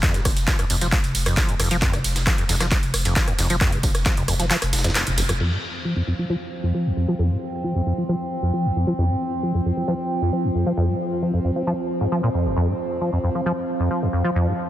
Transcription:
0.03 F2, kick, clap, closed hi-hat, tambourine
0.14 F1 G#2, snare, closed hi-hat, tambourine
0.25 F1, kick, cross-stick, open hi-hat, ride, tambourine
0.37 F1, closed hi-hat, tambourine
0.48 F3, kick, snare, clap, closed hi-hat, tambourine
0.59 F1 F2, cross-stick, closed hi-hat, tambourine
0.70 F1 F2, open hi-hat, ride, tambourine
0.81 F1 F3, snare, closed hi-hat, tambourine
0.92 F3, kick, cross-stick, clap, closed hi-hat, tambourine
1.04 F1, closed hi-hat, tambourine
1.15 F1, open hi-hat, ride, tambourine
1.26 F1 F2, cross-stick, closed hi-hat, tambourine
1.37 F3, kick, snare, clap, closed hi-hat, tambourine
1.49 F1 D#2, closed hi-hat, tambourine
1.60 F1 F2, cross-stick, snare, open hi-hat, ride, tambourine
1.71 F1 F3, snare, closed hi-hat, tambourine
1.82 F2, kick, clap, closed hi-hat, tambourine
1.93 F1 G#2, cross-stick, snare, closed hi-hat, tambourine
2.04 F1, open hi-hat, ride, tambourine
2.16 F1, snare, closed hi-hat, tambourine
2.27 F3, kick, cross-stick, snare, clap, closed hi-hat, tambourine
2.38 F1 F2, closed hi-hat, tambourine
2.49 F1 F2, snare, open hi-hat, ride, tambourine
2.60 F1 F3, cross-stick, snare, closed hi-hat, tambourine
2.71 F3, kick, snare, clap, closed hi-hat, tambourine
2.83 F1, closed hi-hat, tambourine
2.94 F1, cross-stick, open hi-hat, ride, tambourine
3.05 F1 F2, closed hi-hat, tambourine
3.16 F3, kick, snare, clap, closed hi-hat, tambourine
3.27 F1 D#2, cross-stick, closed hi-hat, tambourine
3.39 F1 F2, snare, open hi-hat, ride, tambourine
3.50 F1 F3, closed hi-hat, tambourine
3.61 F2, kick, cross-stick, clap, closed hi-hat, tambourine
3.72 F1 G#2, closed hi-hat, tambourine
3.83 F1, kick, open hi-hat, ride, tambourine
3.95 F1, cross-stick, closed hi-hat, tambourine
4.06 F3, kick, snare, clap, closed hi-hat, tambourine
4.17 F1 F2, closed hi-hat, tambourine
4.28 F1 F2, cross-stick, open hi-hat, ride, tambourine
4.39 F1 F3, snare, closed hi-hat, tambourine
4.50 F3, clap, closed hi-hat, tambourine
4.62 F1, cross-stick, closed hi-hat, tambourine
4.73 F1, snare, open hi-hat, ride, tambourine
4.79 snare, tambourine
4.84 F1 F2, snare, closed hi-hat, tambourine
4.90 snare, tambourine
4.95 F1, cross-stick, snare, clap, closed hi-hat, tambourine
5.07 F1, closed hi-hat, tambourine
5.18 F1, snare, open hi-hat, ride, tambourine
5.29 F1 F2, cross-stick, snare, closed hi-hat, tambourine
5.40 F2 F3 C4, crash
5.52 G#2
5.85 F3
5.96 F2
6.07 F2
6.19 F3
6.30 F3
6.63 F2
6.74 F3
6.86 D#2
6.97 F2
7.08 F3
7.19 F2
7.30 G#2
7.64 F3
7.75 F2
7.86 F2
7.98 F3
8.09 F3
8.42 F2
8.54 F3
8.65 D#2
8.76 F2
8.87 F3
8.98 F2
9.10 G#2
9.43 F3
9.55 F2
9.66 F2
9.77 F3
9.88 F3
10.22 F2
10.33 F3
10.44 D#2
10.55 F2
10.66 F3
10.77 F2
10.89 G#2
11.22 F3
11.34 F2
11.45 F2
11.56 F3
11.67 F3
12.01 G#2
12.12 F3
12.23 A#2
12.34 F2
12.46 F1
12.56 F2
12.68 G#2
13.01 F3
13.13 F2
13.24 F2
13.35 F3
13.46 F3
13.80 F2
13.91 F3
14.02 D#2
14.13 F2
14.24 F3
14.35 F2
14.47 G#2

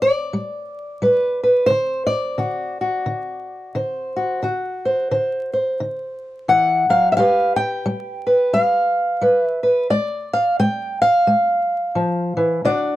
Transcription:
Already playing: G3
0.02 D5
0.33 G3
1.02 G3 B4
1.43 B4
1.66 D3 C5
2.07 D5
2.38 D3 F#4
2.81 F#4
3.06 D3
3.75 D3 C5
4.16 F#4
4.43 D3 F#4
4.85 C5
5.11 D3 C5
5.53 C5
5.80 D3
6.48 E3 F#5
6.89 F#3 F5
7.12 E5
7.17 G3 G4 B4 F5
7.56 G5
7.86 G3
8.27 B4
8.53 G3 F5
9.21 G3 B4
9.43 E5
9.63 B4
9.90 G#3 D5
10.33 F5
10.59 G#3 G5
11.02 F5
11.27 G#3
11.95 F3
12.37 E3
12.65 D3 D4 F#4 D5

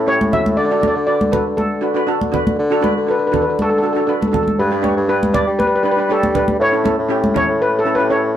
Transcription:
Already playing: A2
0.07 C#4 E4 G4 C#5
0.21 high conga
0.32 C#4 E4 F#4 E5, low conga
0.46 high conga
0.57 D3 D5
0.65 D5
0.71 D4 F#4 A4 D5
0.80 D4 F#4 A4 D5, high conga
0.88 D5
0.95 D3 D5
1.07 D4 F#4 B4 D5
1.21 high conga
1.31 D4 F#4 A4 B4, low conga
1.46 D3
1.57 A4, high conga
1.81 D4 F#4 B4
1.94 D4 F#4 B4
2.07 D4 F#4 A4
2.21 high conga
2.32 D4 F#4 B4, low conga
2.47 high conga
2.58 D3
2.70 D4 F#4 A4
2.81 D4 F#4 B4, high conga
2.97 D3
3.07 D4 F#4 A4 B4
3.19 B4
3.27 B4
3.32 D4 F#4 A4 B4, low conga
3.42 B4
3.47 D3 B4
3.59 A4, high conga
3.70 A4
3.78 D4 A4
3.83 F#4 A4
3.93 D4 F#4 A4
4.00 A4
4.07 D4 F#4 A4 B4
4.13 A4
4.21 A4, high conga
4.27 A4
4.32 D4 F#4 A4, low conga
4.43 A4
4.48 high conga
4.59 G2 B4
4.71 D4 G4 B4
4.82 D4 G4 C#5, high conga
4.97 G2
5.08 D4 G4 B4 D5
5.23 high conga
5.33 D4 G4 B4 D5, low conga
5.47 G3
5.59 B4, high conga
5.67 B4
5.76 B4
5.83 D4 G4 B4
5.92 B4
5.96 D4 G4 B4
6.09 D4 G4 A4 C#5
6.23 high conga
6.34 D4 G4 B4, low conga
6.48 high conga
6.59 A2 C#5
6.72 C#4 E4 A4
6.84 C#4 E4 A4, high conga
6.98 A2
7.09 C#4 E4 G4
7.24 high conga
7.34 C#4 E4 A4 C#5, low conga
7.48 A2
7.62 B4
7.79 A4
7.85 C#4 E4 A4
7.95 C#4 E4 B4
8.00 G4
8.10 C#4 E4 A4 C#5

